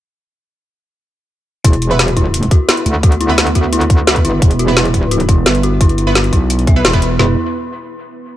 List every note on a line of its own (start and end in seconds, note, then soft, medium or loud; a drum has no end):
1.64 2.50 E1 loud
1.64 7.15 B3 medium
1.64 1.75 E4 medium
1.64 7.15 E4 medium
1.64 7.15 B4 medium
1.64 kick loud
1.64 closed hi-hat loud
1.73 closed hi-hat soft
1.82 closed hi-hat medium
1.91 2.02 B3 loud
1.91 2.02 E4 medium
1.91 2.02 B4 loud
1.99 2.06 F#4 medium
1.99 snare loud
1.99 closed hi-hat loud
2.08 closed hi-hat soft
2.17 2.27 E4 medium
2.17 kick medium
2.17 closed hi-hat medium
2.34 closed hi-hat loud
2.43 closed hi-hat soft
2.51 2.58 F#4 medium
2.51 kick loud
2.51 closed hi-hat medium
2.69 2.76 B3 medium
2.69 2.79 E4 medium
2.69 2.76 E4 medium
2.69 2.76 B4 medium
2.69 snare loud
2.69 closed hi-hat medium
2.77 closed hi-hat soft
2.86 4.23 D2 loud
2.86 closed hi-hat medium
3.03 3.11 F#4 medium
3.03 kick loud
3.03 closed hi-hat loud
3.12 closed hi-hat soft
3.21 3.31 E4 medium
3.21 closed hi-hat medium
3.29 3.41 B3 medium
3.29 3.41 E4 medium
3.29 3.41 B4 loud
3.38 snare loud
3.38 closed hi-hat loud
3.47 closed hi-hat soft
3.55 3.63 F#4 medium
3.55 kick medium
3.55 closed hi-hat medium
3.73 3.84 E4 medium
3.73 closed hi-hat loud
3.81 closed hi-hat soft
3.90 kick loud
3.90 closed hi-hat medium
4.07 4.15 B3 medium
4.07 4.15 E4 medium
4.07 4.15 F#4 medium
4.07 4.15 B4 loud
4.07 snare loud
4.07 closed hi-hat loud
4.16 kick medium
4.16 closed hi-hat soft
4.25 4.41 G1 loud
4.25 4.36 E4 medium
4.25 closed hi-hat medium
4.42 5.27 E1 loud
4.42 kick loud
4.42 closed hi-hat loud
4.51 closed hi-hat soft
4.59 4.67 F#4 medium
4.59 closed hi-hat medium
4.68 4.80 B3 medium
4.68 4.80 E4 medium
4.68 4.80 B4 loud
4.77 4.88 E4 medium
4.77 snare loud
4.77 closed hi-hat loud
4.85 closed hi-hat soft
4.94 kick medium
4.94 closed hi-hat medium
5.11 5.19 F#4 medium
5.11 closed hi-hat loud
5.20 closed hi-hat soft
5.29 5.45 E1 loud
5.29 5.40 E4 medium
5.29 kick loud
5.29 closed hi-hat medium
5.46 6.31 G1 loud
5.46 5.53 B3 medium
5.46 5.53 E4 medium
5.46 5.53 B4 medium
5.46 snare loud
5.46 closed hi-hat medium
5.55 closed hi-hat soft
5.63 5.71 F#4 medium
5.63 closed hi-hat medium
5.81 5.92 E4 medium
5.81 kick loud
5.81 closed hi-hat loud
5.89 closed hi-hat soft
5.98 closed hi-hat medium
6.07 6.19 B3 loud
6.07 6.18 E4 medium
6.07 6.19 B4 loud
6.15 6.23 F#4 medium
6.15 snare loud
6.15 closed hi-hat medium
6.24 closed hi-hat soft
6.33 6.83 B1 loud
6.33 6.44 E4 medium
6.33 kick medium
6.33 closed hi-hat medium
6.50 closed hi-hat medium
6.59 closed hi-hat soft
6.67 6.75 E5 medium
6.67 kick loud
6.67 closed hi-hat medium
6.76 6.91 B3 medium
6.76 6.91 E4 medium
6.76 6.91 B4 medium
6.85 7.18 E1 loud
6.85 6.92 E4 loud
6.85 snare loud
6.85 closed hi-hat medium
6.93 7.01 B3 loud
6.93 7.01 E4 medium
6.93 7.01 B4 loud
6.93 kick medium
6.93 closed hi-hat soft
7.02 closed hi-hat medium
7.19 7.36 E1 loud
7.19 7.32 B3 medium
7.19 7.36 E4 medium
7.19 7.32 E4 medium
7.19 7.32 B4 medium
7.19 snare loud
7.19 floor tom loud